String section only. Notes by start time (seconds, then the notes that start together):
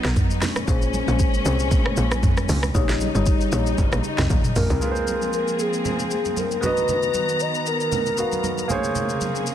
Already playing: F#3 B3 D#4
0.42 A#2 G#3 C#4
2.75 C#3 G3 D#4
4.82 F3 A#3 C4 G#4
6.63 D#3 B3 A#5
8.70 C3 C#3 A#3 G#4